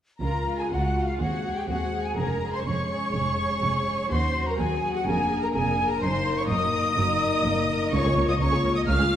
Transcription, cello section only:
0.21 C#2
0.71 C#2
1.19 D#2
1.69 D#2
2.17 F2
2.66 F2
3.15 F2
3.63 F2
4.12 D#2
4.58 D#2
5.07 F2
5.54 F2
6.02 F#2
6.50 F#2
6.97 F#2
7.44 F#2
7.92 C#2
8.05 C#2
8.16 C#2
8.29 C#2
8.40 C#2
8.52 C#2
8.65 C#2
8.88 C#2
9.00 C#2

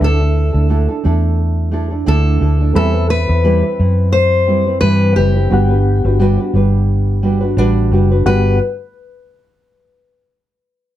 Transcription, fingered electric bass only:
0.01 D2
0.54 D2
1.05 E2
2.08 D2
2.41 D2
2.76 E2
3.29 E2
3.79 F#2
4.82 G2
5.17 F#1
5.52 G1
6.05 G1
6.54 G1
7.57 A1
7.91 F#1
8.26 G1

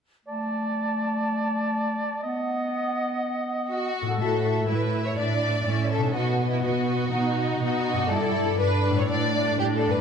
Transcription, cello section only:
4.20 A2
4.69 A2
5.17 A2
5.66 A2
6.14 B2
6.64 B2
7.13 B2
7.61 B2
8.10 G2
8.59 G2
9.08 A2
9.57 A2

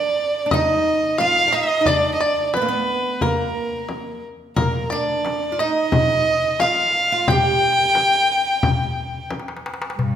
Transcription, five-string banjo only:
Already playing: D5
0.51 D#5
1.18 F5
1.52 D#5
1.86 D5
2.20 D5
2.54 B4
3.22 A#4
4.57 A#4
4.90 D5
5.59 D#5
6.60 F5
7.28 G5

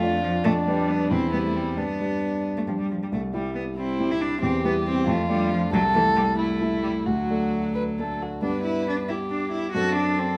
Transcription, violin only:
Already playing: F4
0.45 D4
1.11 E4
1.77 D4
3.77 E4
4.42 G4
5.07 F4
5.73 A4
6.39 E4
7.06 F#4
7.75 B4
7.99 A4
8.22 F#4
8.44 B4
9.10 G4
9.77 A4

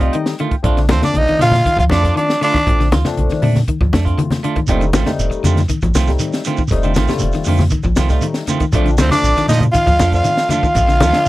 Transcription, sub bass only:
0.64 A#1
0.92 D2
1.16 A#1
1.29 A#1
1.42 A#2
1.79 D2
1.92 F2
2.68 A#1
2.93 D2
3.19 A#1
3.30 A#1
3.42 A#2
3.81 D2
3.94 F2
4.69 F1
4.93 A1
5.18 F1
5.31 F1
5.44 F2
5.83 A1
5.95 C2
6.71 F1
6.97 A1
7.22 F1
7.36 F1
7.48 F2
7.85 A1
7.97 C2
8.74 A#1
8.99 D2
9.23 A#1
9.36 A#1
9.49 A#2
9.87 D2
10.01 F2
10.76 A#1
11.02 D2

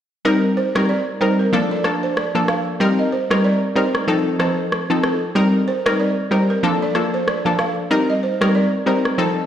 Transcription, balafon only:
0.25 A#4
0.57 C5
0.89 D5
1.21 C5
1.39 A#4
1.71 D5
2.03 C5
2.17 D5
2.49 F5
2.99 D#5
3.12 C5
3.44 D5
3.76 C5
4.40 C5
5.04 A4
5.36 A#4
5.68 C5
6.00 D5
6.32 C5
6.50 A#4
6.82 D5
7.14 C5
7.27 D5
7.59 F5
8.10 D#5
8.23 C5
8.55 D5
8.87 C5

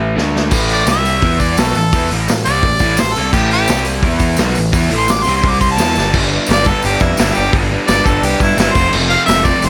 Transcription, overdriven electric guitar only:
Already playing: A2 E3 A3
0.16 D3 A3 D4
0.51 A2 E3 A3
0.87 C3 G3 C4
1.23 E3 B3 E4
1.58 B2 F#3 B3
1.76 A2 E3
1.94 E3 B3 E4
2.11 A2 E3 A3
2.29 A2 E3
2.46 C3 G3 C4
2.64 A2 E3
2.81 A2 E3 A3
2.99 A2 E3
3.16 C3 G3 C4
3.33 A2 E3 A3
3.69 C3 G3 C4
4.04 E3 B3 E4
4.38 B2 F#3 B3
4.56 A2 E3
4.72 E3 B3 E4
4.91 A2 E3 A3
5.08 A2 E3
5.25 C3 G3 C4
5.42 C3 G3 C4
5.77 E3 B3 E4
5.95 G2 D3 G3
6.11 G2 D3 G3
6.15 B3 D4
6.30 B3 D4
6.34 G3
6.47 D3 G3 B3
6.52 D4
6.65 B3 D4
6.69 G3
7.18 G2 D3 G3 B3 D4
7.35 G3 B3 D4
7.51 G2 D3 G3 B3
7.55 D4
7.70 G3 B3 D4
7.87 D3 G3 B3
7.91 D4
8.04 B3 D4
8.09 G3
8.56 G2 D3 G3 B3
8.60 D4
8.74 C3 F3 A3 C4
8.78 F2
8.91 F2 C3 F3 A3
8.95 C4
9.09 F3 A3 C4
9.26 C3 F3 A3 C4
9.45 A3 C4
9.49 F3

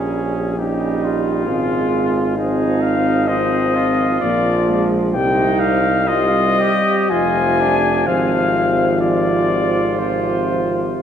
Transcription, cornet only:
Already playing: G#4
0.58 G4
1.05 F4
2.37 G#4
2.81 F5
3.27 D#5
4.21 D5
5.14 G5
5.60 F5
6.08 D#5
7.10 G#5
8.07 F5
9.02 D5
9.99 C5

